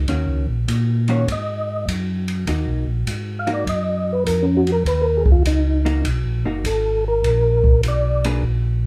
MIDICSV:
0, 0, Header, 1, 5, 480
1, 0, Start_track
1, 0, Tempo, 596421
1, 63, Time_signature, 4, 2, 24, 8
1, 7136, End_track
2, 0, Start_track
2, 0, Title_t, "Tonewheel organ"
2, 0, Program_c, 0, 16
2, 896, Note_on_c, 0, 73, 87
2, 1034, Note_off_c, 0, 73, 0
2, 1063, Note_on_c, 0, 75, 81
2, 1493, Note_off_c, 0, 75, 0
2, 2730, Note_on_c, 0, 77, 79
2, 2835, Note_off_c, 0, 77, 0
2, 2844, Note_on_c, 0, 74, 78
2, 2932, Note_off_c, 0, 74, 0
2, 2969, Note_on_c, 0, 75, 93
2, 3321, Note_on_c, 0, 71, 87
2, 3333, Note_off_c, 0, 75, 0
2, 3410, Note_off_c, 0, 71, 0
2, 3435, Note_on_c, 0, 70, 90
2, 3561, Note_on_c, 0, 61, 57
2, 3589, Note_off_c, 0, 70, 0
2, 3676, Note_on_c, 0, 66, 89
2, 3732, Note_off_c, 0, 61, 0
2, 3788, Note_off_c, 0, 66, 0
2, 3799, Note_on_c, 0, 70, 76
2, 3889, Note_off_c, 0, 70, 0
2, 3922, Note_on_c, 0, 71, 88
2, 4036, Note_on_c, 0, 70, 84
2, 4072, Note_off_c, 0, 71, 0
2, 4162, Note_on_c, 0, 68, 89
2, 4210, Note_off_c, 0, 70, 0
2, 4271, Note_off_c, 0, 68, 0
2, 4281, Note_on_c, 0, 65, 87
2, 4370, Note_off_c, 0, 65, 0
2, 4402, Note_on_c, 0, 63, 77
2, 4842, Note_off_c, 0, 63, 0
2, 5362, Note_on_c, 0, 69, 80
2, 5669, Note_off_c, 0, 69, 0
2, 5698, Note_on_c, 0, 70, 89
2, 6287, Note_off_c, 0, 70, 0
2, 6343, Note_on_c, 0, 74, 90
2, 6640, Note_off_c, 0, 74, 0
2, 7136, End_track
3, 0, Start_track
3, 0, Title_t, "Hollow-body jazz guitar"
3, 0, Program_c, 1, 26
3, 70, Note_on_c, 1, 51, 46
3, 71, Note_on_c, 1, 61, 60
3, 74, Note_on_c, 1, 58, 57
3, 80, Note_on_c, 1, 66, 61
3, 359, Note_off_c, 1, 51, 0
3, 360, Note_off_c, 1, 61, 0
3, 361, Note_off_c, 1, 58, 0
3, 364, Note_off_c, 1, 66, 0
3, 874, Note_on_c, 1, 51, 66
3, 879, Note_on_c, 1, 58, 74
3, 883, Note_on_c, 1, 66, 80
3, 885, Note_on_c, 1, 61, 76
3, 1011, Note_off_c, 1, 51, 0
3, 1014, Note_off_c, 1, 58, 0
3, 1016, Note_off_c, 1, 66, 0
3, 1017, Note_off_c, 1, 61, 0
3, 1992, Note_on_c, 1, 58, 52
3, 1998, Note_on_c, 1, 63, 52
3, 2004, Note_on_c, 1, 66, 55
3, 2281, Note_off_c, 1, 58, 0
3, 2284, Note_off_c, 1, 63, 0
3, 2287, Note_off_c, 1, 66, 0
3, 2792, Note_on_c, 1, 58, 67
3, 2794, Note_on_c, 1, 63, 64
3, 2797, Note_on_c, 1, 66, 82
3, 2931, Note_off_c, 1, 58, 0
3, 2933, Note_off_c, 1, 63, 0
3, 2934, Note_off_c, 1, 66, 0
3, 4710, Note_on_c, 1, 58, 73
3, 4714, Note_on_c, 1, 63, 74
3, 4716, Note_on_c, 1, 66, 70
3, 4850, Note_off_c, 1, 58, 0
3, 4853, Note_off_c, 1, 63, 0
3, 4853, Note_off_c, 1, 66, 0
3, 5195, Note_on_c, 1, 58, 56
3, 5198, Note_on_c, 1, 63, 53
3, 5204, Note_on_c, 1, 66, 62
3, 5333, Note_off_c, 1, 58, 0
3, 5334, Note_off_c, 1, 63, 0
3, 5337, Note_off_c, 1, 66, 0
3, 6640, Note_on_c, 1, 58, 75
3, 6644, Note_on_c, 1, 62, 70
3, 6644, Note_on_c, 1, 68, 86
3, 6646, Note_on_c, 1, 71, 73
3, 6775, Note_off_c, 1, 58, 0
3, 6777, Note_off_c, 1, 62, 0
3, 6777, Note_off_c, 1, 68, 0
3, 6778, Note_off_c, 1, 71, 0
3, 7136, End_track
4, 0, Start_track
4, 0, Title_t, "Tonewheel organ"
4, 0, Program_c, 2, 16
4, 60, Note_on_c, 2, 39, 86
4, 214, Note_on_c, 2, 37, 52
4, 217, Note_off_c, 2, 39, 0
4, 377, Note_on_c, 2, 34, 65
4, 379, Note_off_c, 2, 37, 0
4, 529, Note_off_c, 2, 34, 0
4, 546, Note_on_c, 2, 46, 78
4, 1012, Note_off_c, 2, 46, 0
4, 1026, Note_on_c, 2, 44, 69
4, 1492, Note_off_c, 2, 44, 0
4, 1511, Note_on_c, 2, 42, 85
4, 1975, Note_off_c, 2, 42, 0
4, 1988, Note_on_c, 2, 39, 85
4, 2143, Note_off_c, 2, 39, 0
4, 2144, Note_on_c, 2, 35, 54
4, 2296, Note_on_c, 2, 34, 61
4, 2305, Note_off_c, 2, 35, 0
4, 2449, Note_off_c, 2, 34, 0
4, 2468, Note_on_c, 2, 44, 74
4, 2933, Note_off_c, 2, 44, 0
4, 2952, Note_on_c, 2, 42, 76
4, 3415, Note_off_c, 2, 42, 0
4, 3424, Note_on_c, 2, 41, 84
4, 3891, Note_off_c, 2, 41, 0
4, 3903, Note_on_c, 2, 39, 80
4, 4371, Note_off_c, 2, 39, 0
4, 4386, Note_on_c, 2, 37, 85
4, 4852, Note_off_c, 2, 37, 0
4, 4866, Note_on_c, 2, 35, 79
4, 5020, Note_on_c, 2, 34, 52
4, 5021, Note_off_c, 2, 35, 0
4, 5183, Note_off_c, 2, 34, 0
4, 5186, Note_on_c, 2, 30, 75
4, 5335, Note_off_c, 2, 30, 0
4, 5348, Note_on_c, 2, 32, 89
4, 5813, Note_off_c, 2, 32, 0
4, 5821, Note_on_c, 2, 34, 90
4, 6289, Note_off_c, 2, 34, 0
4, 6305, Note_on_c, 2, 35, 86
4, 6771, Note_off_c, 2, 35, 0
4, 6780, Note_on_c, 2, 34, 84
4, 7136, Note_off_c, 2, 34, 0
4, 7136, End_track
5, 0, Start_track
5, 0, Title_t, "Drums"
5, 62, Note_on_c, 9, 36, 18
5, 63, Note_on_c, 9, 51, 52
5, 143, Note_off_c, 9, 36, 0
5, 143, Note_off_c, 9, 51, 0
5, 545, Note_on_c, 9, 36, 21
5, 550, Note_on_c, 9, 44, 53
5, 550, Note_on_c, 9, 51, 63
5, 626, Note_off_c, 9, 36, 0
5, 630, Note_off_c, 9, 44, 0
5, 630, Note_off_c, 9, 51, 0
5, 867, Note_on_c, 9, 51, 43
5, 948, Note_off_c, 9, 51, 0
5, 1027, Note_on_c, 9, 36, 23
5, 1032, Note_on_c, 9, 51, 57
5, 1107, Note_off_c, 9, 36, 0
5, 1113, Note_off_c, 9, 51, 0
5, 1509, Note_on_c, 9, 36, 20
5, 1517, Note_on_c, 9, 44, 57
5, 1517, Note_on_c, 9, 51, 72
5, 1589, Note_off_c, 9, 36, 0
5, 1597, Note_off_c, 9, 44, 0
5, 1597, Note_off_c, 9, 51, 0
5, 1835, Note_on_c, 9, 51, 49
5, 1915, Note_off_c, 9, 51, 0
5, 1989, Note_on_c, 9, 36, 18
5, 1990, Note_on_c, 9, 51, 58
5, 2069, Note_off_c, 9, 36, 0
5, 2070, Note_off_c, 9, 51, 0
5, 2469, Note_on_c, 9, 36, 16
5, 2471, Note_on_c, 9, 44, 46
5, 2471, Note_on_c, 9, 51, 63
5, 2550, Note_off_c, 9, 36, 0
5, 2552, Note_off_c, 9, 44, 0
5, 2552, Note_off_c, 9, 51, 0
5, 2794, Note_on_c, 9, 51, 40
5, 2874, Note_off_c, 9, 51, 0
5, 2949, Note_on_c, 9, 36, 20
5, 2955, Note_on_c, 9, 51, 53
5, 3030, Note_off_c, 9, 36, 0
5, 3036, Note_off_c, 9, 51, 0
5, 3427, Note_on_c, 9, 36, 18
5, 3432, Note_on_c, 9, 44, 66
5, 3432, Note_on_c, 9, 51, 57
5, 3507, Note_off_c, 9, 36, 0
5, 3513, Note_off_c, 9, 44, 0
5, 3513, Note_off_c, 9, 51, 0
5, 3757, Note_on_c, 9, 51, 47
5, 3838, Note_off_c, 9, 51, 0
5, 3907, Note_on_c, 9, 36, 23
5, 3913, Note_on_c, 9, 51, 57
5, 3988, Note_off_c, 9, 36, 0
5, 3993, Note_off_c, 9, 51, 0
5, 4231, Note_on_c, 9, 36, 56
5, 4311, Note_off_c, 9, 36, 0
5, 4386, Note_on_c, 9, 36, 18
5, 4390, Note_on_c, 9, 44, 66
5, 4390, Note_on_c, 9, 51, 69
5, 4466, Note_off_c, 9, 36, 0
5, 4470, Note_off_c, 9, 44, 0
5, 4470, Note_off_c, 9, 51, 0
5, 4717, Note_on_c, 9, 51, 44
5, 4798, Note_off_c, 9, 51, 0
5, 4865, Note_on_c, 9, 36, 22
5, 4867, Note_on_c, 9, 51, 65
5, 4945, Note_off_c, 9, 36, 0
5, 4948, Note_off_c, 9, 51, 0
5, 5345, Note_on_c, 9, 36, 28
5, 5349, Note_on_c, 9, 44, 59
5, 5349, Note_on_c, 9, 51, 70
5, 5426, Note_off_c, 9, 36, 0
5, 5430, Note_off_c, 9, 44, 0
5, 5430, Note_off_c, 9, 51, 0
5, 5825, Note_on_c, 9, 36, 21
5, 5829, Note_on_c, 9, 51, 56
5, 5905, Note_off_c, 9, 36, 0
5, 5909, Note_off_c, 9, 51, 0
5, 6148, Note_on_c, 9, 36, 53
5, 6228, Note_off_c, 9, 36, 0
5, 6304, Note_on_c, 9, 36, 22
5, 6304, Note_on_c, 9, 44, 61
5, 6304, Note_on_c, 9, 51, 65
5, 6384, Note_off_c, 9, 44, 0
5, 6384, Note_off_c, 9, 51, 0
5, 6385, Note_off_c, 9, 36, 0
5, 6635, Note_on_c, 9, 51, 68
5, 6715, Note_off_c, 9, 51, 0
5, 6785, Note_on_c, 9, 36, 22
5, 6865, Note_off_c, 9, 36, 0
5, 7136, End_track
0, 0, End_of_file